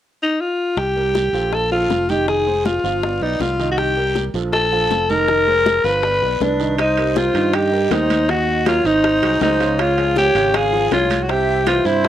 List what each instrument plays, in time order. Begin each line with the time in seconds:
0.23 alto saxophone D#4
0.41 alto saxophone F4
0.77 fingered electric bass C2, alto saxophone G4, high bongo, high conga, long guiro
0.96 grand piano G3 G4 A#4, high conga
1.15 high bongo, high conga, short guiro
1.33 fingered electric bass A#1, grand piano F3 F4 A4, high bongo, high conga, short guiro
1.52 alto saxophone A4, high bongo, high conga, long guiro
1.71 grand piano F3 F4 A4, alto saxophone F4, high bongo, high conga
1.89 fingered electric bass F1, high bongo, low bongo, high conga, short guiro
2.09 grand piano D#3 D#4 D#5, alto saxophone G4, high bongo, high conga, short guiro
2.28 grand piano D#3 D#4 D#5, alto saxophone G#4, high bongo, high conga, long guiro
2.46 grand piano G#3 G#4 C5, high conga
2.65 alto saxophone F4, high bongo, high conga, short guiro
2.84 fingered electric bass G1, grand piano F3 F4 F5, high bongo, high conga, short guiro
3.03 grand piano B3 B4 D5, high bongo, high conga, long guiro
3.21 fingered electric bass B1, grand piano B3 B4 D5, alto saxophone D#4, high bongo, high conga
3.40 fingered electric bass C2, alto saxophone F4, high bongo, low bongo, high conga, short guiro
3.59 grand piano D#3 D#4 D#5, high bongo, high conga, short guiro
3.72 alto saxophone F#4
3.78 alto saxophone G4, high bongo, high conga, long guiro
3.97 grand piano G3 G4 A#4, high conga
4.15 high bongo, high conga, short guiro
4.34 fingered electric bass A#1, grand piano F3 F4 A4, high bongo, high conga, short guiro
4.53 alto saxophone A4, high bongo, high conga, long guiro
4.72 grand piano F3 F4 A4, high bongo, high conga
4.90 fingered electric bass F1, high bongo, low bongo, high conga, short guiro
5.09 grand piano D#3 D#4 D#5, alto saxophone A#4, high bongo, high conga, short guiro
5.28 grand piano D#3 D#4 D#5, high bongo, high conga, long guiro
5.47 grand piano G#3 G#4 C5, high conga
5.66 high bongo, high conga, short guiro
5.84 fingered electric bass G1, grand piano F3 F4 F5, alto saxophone B4, high bongo, high conga, short guiro
6.03 grand piano B3 D5, high bongo, high conga, long guiro
6.22 fingered electric bass B1, grand piano B3 B4 D5, high bongo, high conga
6.40 fingered electric bass C2, alto saxophone D4, flute B4, high bongo, low bongo, high conga, short guiro
6.60 grand piano D#3 D#4 D#5, high bongo, high conga, short guiro
6.78 alto saxophone D#4, flute C5, high bongo, high conga, high timbale, long guiro
6.97 grand piano G3 G4 A#4, high conga, high timbale
7.16 alto saxophone F4, flute C5, high bongo, high conga, low timbale, short guiro
7.34 fingered electric bass G2, grand piano D#3 D#4 D#5, high bongo, high conga, high timbale, short guiro
7.53 alto saxophone G4, flute D#5, high bongo, high conga, high timbale, long guiro
7.72 grand piano G3 G4 A#4, high bongo, high conga
7.91 fingered electric bass D#2, grand piano G3 G4 A#4, alto saxophone D#4, flute C5, high bongo, low bongo, high conga, high timbale, low timbale, short guiro
8.10 high bongo, high conga, high timbale, short guiro
8.29 grand piano D#3 D#4 D#5, alto saxophone F#4, flute D#5, high bongo, high conga, high timbale, long guiro
8.47 high conga
8.66 grand piano F#3 F#4 A#4, alto saxophone F4, flute C#5, high bongo, high conga, high timbale, low timbale, short guiro
8.84 fingered electric bass G#1, grand piano D#3 D#4 D#5, alto saxophone D#4, flute C5, high bongo, high conga, short guiro
9.04 high bongo, high conga, high timbale, long guiro
9.22 fingered electric bass C2, grand piano F#3 F#4 G#4, high bongo, high conga, high timbale
9.41 fingered electric bass C#2, grand piano F#3 F#4 G#4, alto saxophone D#4, flute C5, high bongo, low bongo, high conga, low timbale, short guiro
9.60 grand piano C#3 C#4 C#5, high bongo, high conga, high timbale, short guiro
9.78 alto saxophone F4, flute C#5, high bongo, high conga, high timbale, long guiro
9.97 grand piano F3 F4 G#4, high conga, high timbale
10.16 alto saxophone G4, flute C#5, high bongo, high conga, low timbale, short guiro
10.35 fingered electric bass G#1, grand piano C#3 C#4 C#5, high bongo, high conga, high timbale, short guiro
10.54 alto saxophone G#4, flute F5, high bongo, high conga, high timbale, long guiro
10.73 grand piano F3 F4 G#4, high bongo, high conga
10.91 fingered electric bass C2, grand piano F3 F4, alto saxophone F4, flute C#5, high bongo, low bongo, high conga, high timbale, low timbale, short guiro
11.10 high bongo, high conga, high timbale, short guiro
11.22 alto saxophone F#4, flute C#5
11.29 grand piano C3 C4 C5, alto saxophone G4, flute E5, high bongo, high conga, high timbale, long guiro
11.48 high conga
11.66 grand piano E3 E4 G4, alto saxophone F4, flute C5, high bongo, high conga, high timbale, low timbale, short guiro
11.85 fingered electric bass G2, grand piano C3 C4 C5, alto saxophone E4, flute C5, high bongo, high conga, short guiro
12.04 high bongo, high conga, high timbale, long guiro